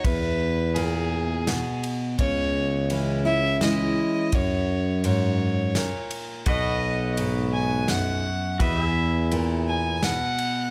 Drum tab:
RD |x-x-xx|x-x-x-|x-x-xx|x-x-x-|
SD |----o-|----o-|----o-|----o-|
BD |o-----|o-----|o-----|o-----|

RD |x-x-xx|
SD |----o-|
BD |o-----|